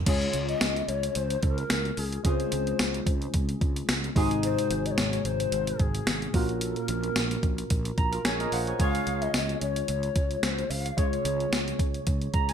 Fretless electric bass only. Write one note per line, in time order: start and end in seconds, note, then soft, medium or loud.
0.07 0.26 C#2 loud
0.34 0.54 C#2 loud
0.62 0.81 C#2 loud
0.88 1.08 C#2 medium
1.16 1.35 C#2 loud
1.43 1.63 C#2 loud
1.71 1.90 C#2 loud
1.98 2.17 C#2 loud
2.25 2.45 C#2 loud
2.53 2.72 C#2 loud
2.80 2.99 C#2 loud
3.06 3.26 C#2 loud
3.34 3.54 C#2 loud
3.61 3.81 C#2 loud
3.89 4.08 C#2 loud
4.16 4.55 G#1 loud
4.71 4.90 G#1 loud
4.98 5.17 G#1 loud
5.25 5.45 G#1 loud
5.52 5.72 G#1 loud
5.80 5.99 G#1 loud
6.07 6.27 G#1 loud
6.34 6.73 A#1 medium
6.89 7.08 A#1 loud
7.16 7.36 A#1 loud
7.43 7.63 A#1 loud
7.71 7.90 A#1 loud
7.98 8.17 A#1 loud
8.25 8.45 A#1 loud
8.52 8.72 A#1 loud
8.80 8.99 C#2 loud
9.07 9.27 C#2 loud
9.34 9.54 C#2 loud
9.62 9.81 C#2 loud
9.89 10.08 C#2 loud
10.16 10.35 C#2 loud
10.43 10.63 C#2 loud
10.70 10.90 C#2 loud
10.98 11.17 C#2 loud
11.25 11.45 C#2 loud
11.52 11.72 C#2 loud
11.79 11.99 C#2 medium
12.07 12.27 C#2 loud
12.34 12.53 C#2 loud